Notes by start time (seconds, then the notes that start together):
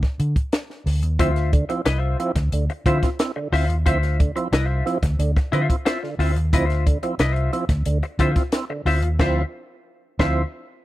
0.03 kick, snare
0.20 D3, closed hi-hat
0.36 kick, closed hi-hat
0.53 snare, closed hi-hat
0.70 snare
0.86 D2, snare, open hi-hat
1.02 D#2, closed hi-hat
1.19 D2 F3 C4 E4 F4 C5 E5, kick, closed hi-hat
1.36 snare, closed hi-hat
1.53 D3, kick, closed hi-hat
1.69 F3 C4 E4, muted clean electric guitar stroke, closed hi-hat
1.85 C2 E4 B4 D#5, snare, closed hi-hat
1.98 F4 C5 E5
2.19 F3 C4 E4, muted clean electric guitar stroke, closed hi-hat
2.35 D2, muted clean electric guitar stroke, kick, snare, closed hi-hat
2.52 D2 D3, closed hi-hat
2.70 muted clean electric guitar stroke, closed hi-hat
2.86 D3 F3 C4 E4 F4 C5 E5, kick, closed hi-hat
3.03 C4 E4, muted clean electric guitar stroke, kick, snare, closed hi-hat
3.19 C4 E4, snare, closed hi-hat
3.36 D3, muted clean electric guitar stroke
3.52 D2 C4 E4 F4 C5 E5, snare, open hi-hat
3.69 D#2, muted clean electric guitar stroke, closed hi-hat
3.86 D2 F3 C4 E4 F4 C5 E5, kick, closed hi-hat
4.03 snare, closed hi-hat
4.20 D3, kick, closed hi-hat
4.36 F3 C4 E4, muted clean electric guitar stroke, closed hi-hat
4.52 C2 E4 B4 D#5, snare, closed hi-hat
4.66 F4 C5 E5
4.86 F3 C4 E4, muted clean electric guitar stroke, closed hi-hat
5.02 D2, muted clean electric guitar stroke, kick, snare, closed hi-hat
5.19 D2 D3, closed hi-hat
5.36 muted clean electric guitar stroke, kick, snare, closed hi-hat
5.52 D3 F3 C4 E4 F4 C5 E5, closed hi-hat
5.69 C4 E4, muted clean electric guitar stroke, kick, closed hi-hat
5.85 C4 E4 F4 C5 E5, snare, closed hi-hat
6.03 D3, muted clean electric guitar stroke, snare
6.19 D2 C4 E4 F4 C5 E5, snare, open hi-hat
6.36 D#2, muted clean electric guitar stroke, closed hi-hat
6.53 D2 F3 C4 E4 B4 D#5, kick, closed hi-hat
6.66 F4 C5 E5, snare, closed hi-hat
6.86 D3, kick, closed hi-hat
7.03 F3 C4 E4, muted clean electric guitar stroke, closed hi-hat
7.19 C2 E4 B4 D#5, snare, closed hi-hat
7.32 F4 C5 E5, closed hi-hat
7.53 F3 C4 E4, muted clean electric guitar stroke, closed hi-hat
7.69 D2, muted clean electric guitar stroke, kick, snare, closed hi-hat
7.86 D2 D3, closed hi-hat
8.03 muted clean electric guitar stroke, closed hi-hat
8.19 D3 F3 C4 E4 F4 C5 E5, kick, closed hi-hat
8.36 C4 E4, muted clean electric guitar stroke, kick, snare, closed hi-hat
8.52 C4 E4, snare, closed hi-hat
8.70 D3, muted clean electric guitar stroke
8.85 D2 C4 E4 F4 C5 E5, snare, open hi-hat
9.02 D#2, muted clean electric guitar stroke, closed hi-hat
9.19 D2 F3 C4 E4 F4 C5 E5, kick, snare, crash
10.19 D2 F3 C4 E4 F4 C5 E5, kick, snare